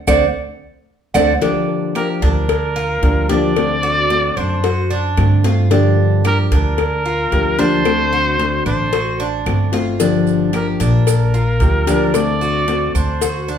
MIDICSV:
0, 0, Header, 1, 7, 480
1, 0, Start_track
1, 0, Key_signature, -2, "minor"
1, 0, Tempo, 536193
1, 1270, Time_signature, 4, 2, 24, 8
1, 12158, End_track
2, 0, Start_track
2, 0, Title_t, "Trumpet"
2, 0, Program_c, 0, 56
2, 1758, Note_on_c, 0, 70, 94
2, 1865, Note_off_c, 0, 70, 0
2, 2003, Note_on_c, 0, 70, 98
2, 2922, Note_off_c, 0, 70, 0
2, 2955, Note_on_c, 0, 74, 127
2, 3912, Note_on_c, 0, 72, 94
2, 3925, Note_off_c, 0, 74, 0
2, 4633, Note_off_c, 0, 72, 0
2, 5613, Note_on_c, 0, 70, 107
2, 5717, Note_off_c, 0, 70, 0
2, 5851, Note_on_c, 0, 70, 110
2, 6795, Note_on_c, 0, 72, 127
2, 6808, Note_off_c, 0, 70, 0
2, 7748, Note_off_c, 0, 72, 0
2, 7753, Note_on_c, 0, 72, 104
2, 8438, Note_off_c, 0, 72, 0
2, 9451, Note_on_c, 0, 70, 86
2, 9555, Note_off_c, 0, 70, 0
2, 9679, Note_on_c, 0, 70, 94
2, 10877, Note_on_c, 0, 74, 126
2, 10891, Note_off_c, 0, 70, 0
2, 11590, Note_off_c, 0, 74, 0
2, 11596, Note_on_c, 0, 72, 85
2, 12158, Note_off_c, 0, 72, 0
2, 12158, End_track
3, 0, Start_track
3, 0, Title_t, "Cuban tres"
3, 0, Program_c, 1, 25
3, 67, Note_on_c, 1, 78, 95
3, 69, Note_on_c, 1, 74, 102
3, 72, Note_on_c, 1, 72, 81
3, 222, Note_off_c, 1, 72, 0
3, 222, Note_off_c, 1, 74, 0
3, 222, Note_off_c, 1, 78, 0
3, 1023, Note_on_c, 1, 78, 108
3, 1027, Note_on_c, 1, 74, 102
3, 1030, Note_on_c, 1, 72, 97
3, 1181, Note_off_c, 1, 72, 0
3, 1181, Note_off_c, 1, 78, 0
3, 1182, Note_off_c, 1, 74, 0
3, 1267, Note_on_c, 1, 62, 87
3, 1734, Note_off_c, 1, 62, 0
3, 1747, Note_on_c, 1, 67, 68
3, 1982, Note_off_c, 1, 67, 0
3, 1989, Note_on_c, 1, 62, 86
3, 2456, Note_off_c, 1, 62, 0
3, 2470, Note_on_c, 1, 65, 86
3, 2937, Note_off_c, 1, 65, 0
3, 2949, Note_on_c, 1, 62, 97
3, 3417, Note_off_c, 1, 62, 0
3, 3429, Note_on_c, 1, 66, 84
3, 3896, Note_off_c, 1, 66, 0
3, 3911, Note_on_c, 1, 62, 84
3, 4145, Note_off_c, 1, 62, 0
3, 4151, Note_on_c, 1, 66, 75
3, 4385, Note_off_c, 1, 66, 0
3, 4391, Note_on_c, 1, 62, 91
3, 4858, Note_off_c, 1, 62, 0
3, 4874, Note_on_c, 1, 65, 90
3, 5107, Note_off_c, 1, 65, 0
3, 5113, Note_on_c, 1, 62, 95
3, 5579, Note_off_c, 1, 62, 0
3, 5590, Note_on_c, 1, 67, 75
3, 5825, Note_off_c, 1, 67, 0
3, 5834, Note_on_c, 1, 62, 81
3, 6300, Note_off_c, 1, 62, 0
3, 6315, Note_on_c, 1, 65, 76
3, 6781, Note_off_c, 1, 65, 0
3, 6796, Note_on_c, 1, 62, 105
3, 7261, Note_off_c, 1, 62, 0
3, 7275, Note_on_c, 1, 66, 76
3, 7740, Note_off_c, 1, 66, 0
3, 7752, Note_on_c, 1, 62, 87
3, 7986, Note_off_c, 1, 62, 0
3, 7991, Note_on_c, 1, 66, 82
3, 8226, Note_off_c, 1, 66, 0
3, 8234, Note_on_c, 1, 62, 91
3, 8700, Note_off_c, 1, 62, 0
3, 8715, Note_on_c, 1, 65, 87
3, 8947, Note_off_c, 1, 65, 0
3, 8953, Note_on_c, 1, 62, 83
3, 9419, Note_off_c, 1, 62, 0
3, 9431, Note_on_c, 1, 67, 71
3, 9665, Note_off_c, 1, 67, 0
3, 9672, Note_on_c, 1, 62, 87
3, 10138, Note_off_c, 1, 62, 0
3, 10151, Note_on_c, 1, 65, 73
3, 10617, Note_off_c, 1, 65, 0
3, 10632, Note_on_c, 1, 62, 100
3, 11097, Note_off_c, 1, 62, 0
3, 11112, Note_on_c, 1, 66, 74
3, 11577, Note_off_c, 1, 66, 0
3, 11593, Note_on_c, 1, 62, 79
3, 11825, Note_off_c, 1, 62, 0
3, 11833, Note_on_c, 1, 66, 71
3, 12065, Note_off_c, 1, 66, 0
3, 12071, Note_on_c, 1, 62, 87
3, 12158, Note_off_c, 1, 62, 0
3, 12158, End_track
4, 0, Start_track
4, 0, Title_t, "Nylon-string guitar"
4, 0, Program_c, 2, 24
4, 66, Note_on_c, 2, 57, 96
4, 66, Note_on_c, 2, 60, 94
4, 68, Note_on_c, 2, 62, 85
4, 221, Note_off_c, 2, 60, 0
4, 221, Note_off_c, 2, 62, 0
4, 222, Note_off_c, 2, 57, 0
4, 1028, Note_on_c, 2, 60, 98
4, 1029, Note_on_c, 2, 57, 99
4, 1030, Note_on_c, 2, 62, 105
4, 1182, Note_off_c, 2, 60, 0
4, 1183, Note_off_c, 2, 57, 0
4, 1183, Note_off_c, 2, 62, 0
4, 1260, Note_on_c, 2, 50, 80
4, 1262, Note_on_c, 2, 53, 76
4, 1266, Note_on_c, 2, 58, 88
4, 1269, Note_on_c, 2, 62, 79
4, 1273, Note_on_c, 2, 67, 98
4, 1736, Note_off_c, 2, 50, 0
4, 1737, Note_off_c, 2, 53, 0
4, 1739, Note_off_c, 2, 58, 0
4, 1740, Note_off_c, 2, 62, 0
4, 1742, Note_off_c, 2, 67, 0
4, 1747, Note_on_c, 2, 53, 55
4, 1751, Note_on_c, 2, 58, 55
4, 1756, Note_on_c, 2, 62, 55
4, 1760, Note_on_c, 2, 67, 52
4, 2216, Note_off_c, 2, 53, 0
4, 2216, Note_off_c, 2, 58, 0
4, 2217, Note_off_c, 2, 62, 0
4, 2219, Note_off_c, 2, 67, 0
4, 2706, Note_on_c, 2, 53, 46
4, 2711, Note_on_c, 2, 58, 58
4, 2714, Note_on_c, 2, 62, 59
4, 2718, Note_on_c, 2, 67, 63
4, 2937, Note_off_c, 2, 67, 0
4, 2939, Note_off_c, 2, 53, 0
4, 2942, Note_off_c, 2, 58, 0
4, 2943, Note_off_c, 2, 62, 0
4, 2948, Note_on_c, 2, 67, 85
4, 2952, Note_on_c, 2, 62, 65
4, 2960, Note_on_c, 2, 53, 62
4, 2960, Note_on_c, 2, 58, 78
4, 3180, Note_off_c, 2, 67, 0
4, 3183, Note_off_c, 2, 62, 0
4, 3186, Note_off_c, 2, 53, 0
4, 3187, Note_off_c, 2, 58, 0
4, 3191, Note_on_c, 2, 50, 84
4, 3195, Note_on_c, 2, 57, 79
4, 3198, Note_on_c, 2, 60, 94
4, 3205, Note_on_c, 2, 66, 85
4, 3656, Note_off_c, 2, 50, 0
4, 3660, Note_off_c, 2, 57, 0
4, 3666, Note_off_c, 2, 60, 0
4, 3667, Note_on_c, 2, 50, 54
4, 3669, Note_off_c, 2, 66, 0
4, 3671, Note_on_c, 2, 57, 50
4, 3677, Note_on_c, 2, 60, 54
4, 3680, Note_on_c, 2, 66, 54
4, 4141, Note_off_c, 2, 50, 0
4, 4142, Note_off_c, 2, 57, 0
4, 4142, Note_off_c, 2, 60, 0
4, 4145, Note_off_c, 2, 66, 0
4, 4631, Note_on_c, 2, 50, 55
4, 4636, Note_on_c, 2, 57, 55
4, 4640, Note_on_c, 2, 60, 54
4, 4644, Note_on_c, 2, 66, 57
4, 4860, Note_off_c, 2, 66, 0
4, 4863, Note_off_c, 2, 50, 0
4, 4865, Note_off_c, 2, 57, 0
4, 4867, Note_off_c, 2, 60, 0
4, 4870, Note_on_c, 2, 66, 74
4, 4878, Note_on_c, 2, 60, 71
4, 4884, Note_on_c, 2, 57, 65
4, 5103, Note_off_c, 2, 66, 0
4, 5104, Note_on_c, 2, 50, 81
4, 5107, Note_off_c, 2, 60, 0
4, 5109, Note_off_c, 2, 57, 0
4, 5110, Note_on_c, 2, 53, 90
4, 5113, Note_on_c, 2, 58, 83
4, 5116, Note_on_c, 2, 62, 96
4, 5120, Note_on_c, 2, 67, 88
4, 5580, Note_off_c, 2, 50, 0
4, 5580, Note_off_c, 2, 53, 0
4, 5584, Note_off_c, 2, 58, 0
4, 5585, Note_off_c, 2, 62, 0
4, 5588, Note_off_c, 2, 67, 0
4, 5591, Note_on_c, 2, 53, 45
4, 5597, Note_on_c, 2, 58, 52
4, 5602, Note_on_c, 2, 62, 56
4, 5606, Note_on_c, 2, 67, 59
4, 6058, Note_off_c, 2, 53, 0
4, 6062, Note_off_c, 2, 58, 0
4, 6062, Note_off_c, 2, 62, 0
4, 6063, Note_off_c, 2, 67, 0
4, 6544, Note_on_c, 2, 53, 45
4, 6551, Note_on_c, 2, 58, 52
4, 6556, Note_on_c, 2, 62, 61
4, 6558, Note_on_c, 2, 67, 66
4, 6780, Note_off_c, 2, 53, 0
4, 6780, Note_off_c, 2, 67, 0
4, 6783, Note_off_c, 2, 58, 0
4, 6783, Note_off_c, 2, 62, 0
4, 6791, Note_on_c, 2, 67, 71
4, 6794, Note_on_c, 2, 62, 73
4, 6798, Note_on_c, 2, 58, 71
4, 6800, Note_on_c, 2, 53, 64
4, 7023, Note_off_c, 2, 67, 0
4, 7024, Note_off_c, 2, 53, 0
4, 7025, Note_off_c, 2, 62, 0
4, 7027, Note_off_c, 2, 58, 0
4, 7027, Note_on_c, 2, 50, 89
4, 7033, Note_on_c, 2, 57, 81
4, 7036, Note_on_c, 2, 60, 88
4, 7040, Note_on_c, 2, 66, 100
4, 7498, Note_off_c, 2, 50, 0
4, 7501, Note_off_c, 2, 57, 0
4, 7506, Note_off_c, 2, 60, 0
4, 7508, Note_off_c, 2, 66, 0
4, 7509, Note_on_c, 2, 50, 56
4, 7512, Note_on_c, 2, 57, 62
4, 7515, Note_on_c, 2, 60, 54
4, 7521, Note_on_c, 2, 66, 64
4, 7975, Note_off_c, 2, 50, 0
4, 7977, Note_off_c, 2, 57, 0
4, 7980, Note_off_c, 2, 66, 0
4, 7981, Note_off_c, 2, 60, 0
4, 8466, Note_on_c, 2, 50, 50
4, 8473, Note_on_c, 2, 57, 53
4, 8477, Note_on_c, 2, 60, 56
4, 8480, Note_on_c, 2, 66, 61
4, 8693, Note_off_c, 2, 66, 0
4, 8699, Note_off_c, 2, 60, 0
4, 8700, Note_off_c, 2, 50, 0
4, 8704, Note_off_c, 2, 57, 0
4, 8704, Note_on_c, 2, 66, 80
4, 8710, Note_on_c, 2, 60, 75
4, 8715, Note_on_c, 2, 57, 68
4, 8940, Note_off_c, 2, 66, 0
4, 8942, Note_off_c, 2, 60, 0
4, 8945, Note_off_c, 2, 57, 0
4, 8947, Note_on_c, 2, 50, 84
4, 8951, Note_on_c, 2, 53, 86
4, 8955, Note_on_c, 2, 58, 89
4, 8958, Note_on_c, 2, 62, 91
4, 8962, Note_on_c, 2, 67, 97
4, 9412, Note_off_c, 2, 53, 0
4, 9419, Note_off_c, 2, 58, 0
4, 9421, Note_off_c, 2, 50, 0
4, 9423, Note_off_c, 2, 62, 0
4, 9423, Note_on_c, 2, 53, 55
4, 9426, Note_off_c, 2, 67, 0
4, 9430, Note_on_c, 2, 58, 55
4, 9434, Note_on_c, 2, 62, 55
4, 9436, Note_on_c, 2, 67, 53
4, 9899, Note_off_c, 2, 53, 0
4, 9902, Note_off_c, 2, 58, 0
4, 9904, Note_off_c, 2, 62, 0
4, 9905, Note_off_c, 2, 67, 0
4, 10393, Note_on_c, 2, 53, 50
4, 10396, Note_on_c, 2, 58, 51
4, 10403, Note_on_c, 2, 62, 48
4, 10406, Note_on_c, 2, 67, 61
4, 10617, Note_off_c, 2, 67, 0
4, 10620, Note_off_c, 2, 62, 0
4, 10623, Note_off_c, 2, 53, 0
4, 10625, Note_off_c, 2, 58, 0
4, 10628, Note_on_c, 2, 67, 81
4, 10631, Note_on_c, 2, 62, 76
4, 10634, Note_on_c, 2, 58, 66
4, 10639, Note_on_c, 2, 53, 67
4, 10860, Note_off_c, 2, 67, 0
4, 10862, Note_off_c, 2, 62, 0
4, 10864, Note_off_c, 2, 58, 0
4, 10866, Note_off_c, 2, 53, 0
4, 10872, Note_on_c, 2, 50, 85
4, 10879, Note_on_c, 2, 57, 83
4, 10881, Note_on_c, 2, 60, 82
4, 10886, Note_on_c, 2, 66, 87
4, 11336, Note_off_c, 2, 50, 0
4, 11340, Note_off_c, 2, 57, 0
4, 11345, Note_off_c, 2, 60, 0
4, 11347, Note_on_c, 2, 50, 52
4, 11349, Note_off_c, 2, 66, 0
4, 11350, Note_on_c, 2, 57, 57
4, 11355, Note_on_c, 2, 60, 55
4, 11361, Note_on_c, 2, 66, 64
4, 11819, Note_off_c, 2, 50, 0
4, 11821, Note_off_c, 2, 57, 0
4, 11823, Note_off_c, 2, 60, 0
4, 11826, Note_off_c, 2, 66, 0
4, 12158, End_track
5, 0, Start_track
5, 0, Title_t, "Upright bass"
5, 0, Program_c, 3, 32
5, 70, Note_on_c, 3, 38, 97
5, 249, Note_off_c, 3, 38, 0
5, 1028, Note_on_c, 3, 38, 102
5, 1208, Note_off_c, 3, 38, 0
5, 1992, Note_on_c, 3, 38, 93
5, 2676, Note_off_c, 3, 38, 0
5, 2708, Note_on_c, 3, 38, 88
5, 3851, Note_off_c, 3, 38, 0
5, 3908, Note_on_c, 3, 42, 87
5, 4596, Note_off_c, 3, 42, 0
5, 4633, Note_on_c, 3, 43, 97
5, 5774, Note_off_c, 3, 43, 0
5, 5831, Note_on_c, 3, 38, 90
5, 6517, Note_off_c, 3, 38, 0
5, 6553, Note_on_c, 3, 38, 84
5, 7694, Note_off_c, 3, 38, 0
5, 7751, Note_on_c, 3, 33, 93
5, 8437, Note_off_c, 3, 33, 0
5, 8472, Note_on_c, 3, 31, 88
5, 9613, Note_off_c, 3, 31, 0
5, 9671, Note_on_c, 3, 34, 96
5, 10356, Note_off_c, 3, 34, 0
5, 10390, Note_on_c, 3, 38, 88
5, 11530, Note_off_c, 3, 38, 0
5, 11589, Note_on_c, 3, 38, 89
5, 12158, Note_off_c, 3, 38, 0
5, 12158, End_track
6, 0, Start_track
6, 0, Title_t, "Muted nylon-string guitar strokes"
6, 2223, Note_on_c, 9, 29, 69
6, 2312, Note_off_c, 9, 29, 0
6, 4150, Note_on_c, 9, 29, 68
6, 4240, Note_off_c, 9, 29, 0
6, 6069, Note_on_c, 9, 29, 72
6, 6159, Note_off_c, 9, 29, 0
6, 7986, Note_on_c, 9, 29, 64
6, 8075, Note_off_c, 9, 29, 0
6, 9908, Note_on_c, 9, 29, 68
6, 9998, Note_off_c, 9, 29, 0
6, 11832, Note_on_c, 9, 29, 64
6, 11921, Note_off_c, 9, 29, 0
6, 12158, End_track
7, 0, Start_track
7, 0, Title_t, "Drums"
7, 67, Note_on_c, 9, 70, 104
7, 69, Note_on_c, 9, 56, 110
7, 70, Note_on_c, 9, 75, 108
7, 156, Note_off_c, 9, 70, 0
7, 159, Note_off_c, 9, 56, 0
7, 159, Note_off_c, 9, 75, 0
7, 1028, Note_on_c, 9, 70, 93
7, 1030, Note_on_c, 9, 75, 99
7, 1033, Note_on_c, 9, 56, 107
7, 1118, Note_off_c, 9, 70, 0
7, 1120, Note_off_c, 9, 75, 0
7, 1122, Note_off_c, 9, 56, 0
7, 1272, Note_on_c, 9, 56, 115
7, 1361, Note_off_c, 9, 56, 0
7, 1748, Note_on_c, 9, 75, 63
7, 1753, Note_on_c, 9, 56, 69
7, 1837, Note_off_c, 9, 75, 0
7, 1842, Note_off_c, 9, 56, 0
7, 1991, Note_on_c, 9, 56, 75
7, 2081, Note_off_c, 9, 56, 0
7, 2229, Note_on_c, 9, 75, 65
7, 2230, Note_on_c, 9, 56, 106
7, 2319, Note_off_c, 9, 75, 0
7, 2320, Note_off_c, 9, 56, 0
7, 2711, Note_on_c, 9, 56, 67
7, 2800, Note_off_c, 9, 56, 0
7, 2950, Note_on_c, 9, 56, 80
7, 3039, Note_off_c, 9, 56, 0
7, 3191, Note_on_c, 9, 56, 113
7, 3192, Note_on_c, 9, 75, 72
7, 3281, Note_off_c, 9, 56, 0
7, 3281, Note_off_c, 9, 75, 0
7, 3673, Note_on_c, 9, 56, 63
7, 3763, Note_off_c, 9, 56, 0
7, 3912, Note_on_c, 9, 75, 74
7, 4001, Note_off_c, 9, 75, 0
7, 4152, Note_on_c, 9, 56, 101
7, 4241, Note_off_c, 9, 56, 0
7, 4632, Note_on_c, 9, 56, 72
7, 4633, Note_on_c, 9, 75, 72
7, 4722, Note_off_c, 9, 56, 0
7, 4723, Note_off_c, 9, 75, 0
7, 4873, Note_on_c, 9, 56, 74
7, 4963, Note_off_c, 9, 56, 0
7, 5111, Note_on_c, 9, 56, 117
7, 5200, Note_off_c, 9, 56, 0
7, 5594, Note_on_c, 9, 56, 78
7, 5595, Note_on_c, 9, 75, 75
7, 5683, Note_off_c, 9, 56, 0
7, 5685, Note_off_c, 9, 75, 0
7, 5835, Note_on_c, 9, 56, 75
7, 5925, Note_off_c, 9, 56, 0
7, 6070, Note_on_c, 9, 56, 91
7, 6077, Note_on_c, 9, 75, 65
7, 6159, Note_off_c, 9, 56, 0
7, 6167, Note_off_c, 9, 75, 0
7, 6555, Note_on_c, 9, 56, 72
7, 6645, Note_off_c, 9, 56, 0
7, 6791, Note_on_c, 9, 56, 80
7, 6881, Note_off_c, 9, 56, 0
7, 7031, Note_on_c, 9, 56, 112
7, 7035, Note_on_c, 9, 75, 68
7, 7120, Note_off_c, 9, 56, 0
7, 7124, Note_off_c, 9, 75, 0
7, 7516, Note_on_c, 9, 56, 69
7, 7605, Note_off_c, 9, 56, 0
7, 7752, Note_on_c, 9, 75, 69
7, 7841, Note_off_c, 9, 75, 0
7, 7992, Note_on_c, 9, 56, 111
7, 8081, Note_off_c, 9, 56, 0
7, 8472, Note_on_c, 9, 56, 73
7, 8475, Note_on_c, 9, 75, 75
7, 8561, Note_off_c, 9, 56, 0
7, 8565, Note_off_c, 9, 75, 0
7, 8709, Note_on_c, 9, 56, 77
7, 8798, Note_off_c, 9, 56, 0
7, 8950, Note_on_c, 9, 56, 126
7, 8952, Note_on_c, 9, 70, 87
7, 9040, Note_off_c, 9, 56, 0
7, 9042, Note_off_c, 9, 70, 0
7, 9193, Note_on_c, 9, 70, 32
7, 9283, Note_off_c, 9, 70, 0
7, 9428, Note_on_c, 9, 56, 71
7, 9435, Note_on_c, 9, 70, 28
7, 9436, Note_on_c, 9, 75, 62
7, 9517, Note_off_c, 9, 56, 0
7, 9524, Note_off_c, 9, 70, 0
7, 9525, Note_off_c, 9, 75, 0
7, 9668, Note_on_c, 9, 56, 70
7, 9675, Note_on_c, 9, 70, 70
7, 9758, Note_off_c, 9, 56, 0
7, 9765, Note_off_c, 9, 70, 0
7, 9909, Note_on_c, 9, 56, 101
7, 9913, Note_on_c, 9, 75, 68
7, 9916, Note_on_c, 9, 70, 90
7, 9999, Note_off_c, 9, 56, 0
7, 10003, Note_off_c, 9, 75, 0
7, 10005, Note_off_c, 9, 70, 0
7, 10156, Note_on_c, 9, 70, 29
7, 10246, Note_off_c, 9, 70, 0
7, 10386, Note_on_c, 9, 56, 69
7, 10401, Note_on_c, 9, 70, 32
7, 10475, Note_off_c, 9, 56, 0
7, 10490, Note_off_c, 9, 70, 0
7, 10629, Note_on_c, 9, 56, 85
7, 10638, Note_on_c, 9, 70, 72
7, 10718, Note_off_c, 9, 56, 0
7, 10727, Note_off_c, 9, 70, 0
7, 10868, Note_on_c, 9, 56, 115
7, 10873, Note_on_c, 9, 75, 70
7, 10875, Note_on_c, 9, 70, 86
7, 10957, Note_off_c, 9, 56, 0
7, 10962, Note_off_c, 9, 75, 0
7, 10964, Note_off_c, 9, 70, 0
7, 11118, Note_on_c, 9, 70, 32
7, 11207, Note_off_c, 9, 70, 0
7, 11351, Note_on_c, 9, 56, 72
7, 11355, Note_on_c, 9, 70, 31
7, 11440, Note_off_c, 9, 56, 0
7, 11445, Note_off_c, 9, 70, 0
7, 11593, Note_on_c, 9, 75, 72
7, 11596, Note_on_c, 9, 70, 71
7, 11682, Note_off_c, 9, 75, 0
7, 11686, Note_off_c, 9, 70, 0
7, 11830, Note_on_c, 9, 56, 100
7, 11833, Note_on_c, 9, 70, 98
7, 11920, Note_off_c, 9, 56, 0
7, 11922, Note_off_c, 9, 70, 0
7, 12074, Note_on_c, 9, 70, 28
7, 12158, Note_off_c, 9, 70, 0
7, 12158, End_track
0, 0, End_of_file